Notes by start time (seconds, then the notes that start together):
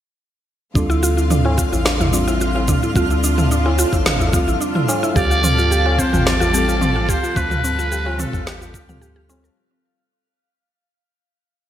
0.74 D2 D3 G3 A3 C4 D4 F4 A4 F5, kick, shaker
0.90 E4, shaker
1.03 F4, shaker
1.17 E4, shaker
1.30 D4, mid tom, shaker
1.45 E4, tabla na
1.58 F4, kick, shaker
1.72 A1 E4, tabla tin, tabla ge, shaker
1.85 D4, snare, shaker
2.00 E4, mid tom, tabla ge, shaker
2.11 G3 C4 D4 F4, shaker
2.15 A4
2.28 E4, tabla tin, shaker
2.41 F4, shaker
2.55 E4, tabla na, tabla tin
2.68 D4, kick, mid tom, shaker
2.83 E4, shaker
2.94 D2 G3 C4 D4 F4, kick, shaker
2.98 A4
3.10 E4, shaker
3.24 D4, shaker
3.38 E4, mid tom, shaker
3.51 D4, shaker
3.66 E4, tabla na
3.78 F4, tabla tin, shaker
3.93 A1 E4, kick, tabla tin, tabla ge, shaker
4.06 D4, snare, mid tom, shaker
4.20 E4, tabla ge, shaker
4.32 G3 C4 F4 A4, kick, shaker
4.47 A1 E4, shaker
4.61 D4, shaker
4.75 E4, mid tom
4.88 D4, tabla na, shaker
5.03 E4, shaker
5.14 D2 F3 G3 C4 F4 G4 A4 D5, kick, shaker
5.31 F4, shaker
5.44 C4, mid tom, shaker
5.58 F4, shaker
5.71 G4, shaker
5.85 F4, tabla na
5.98 C4 C5, kick, tabla tin, shaker
6.13 A1 F4, mid tom, tabla tin, tabla ge, shaker
6.26 C4 D5, snare, shaker
6.40 F4, tabla ge, shaker
6.52 G3 C4 F4 G4 A4, shaker
6.68 F4, tabla tin, shaker
6.81 C4, mid tom, shaker
6.96 F4, tabla na, tabla tin
7.09 G4 C5, kick, shaker
7.23 F4, shaker
7.34 D2 G3 C4 F4 A4 B4, kick, shaker
7.51 F4, mid tom, shaker
7.64 C4, shaker
7.79 F4, shaker
7.92 G4, shaker
8.06 F4, tabla na
8.18 C4 A4, mid tom, tabla tin, shaker
8.33 A1 F4, kick, tabla tin, tabla ge, shaker
8.46 G4, snare, shaker
8.61 F4, tabla ge, shaker
8.74 D2 F4, kick, shaker
8.88 G3 C4 F4 A4 F5, mid tom, shaker
9.01 G4, shaker
9.16 G4
9.28 G3 C4 F4 A4, tabla na, shaker
9.44 A4, shaker